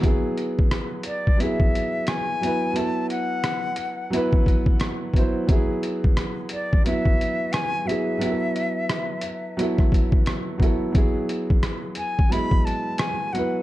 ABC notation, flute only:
X:1
M:4/4
L:1/8
Q:"Swing 16ths" 1/4=88
K:Em
V:1 name="Flute"
z3 d e2 ^g2 | a f3 z4 | z3 d e2 ^g e- | e4- e z3 |
z3 ^g b a g f |]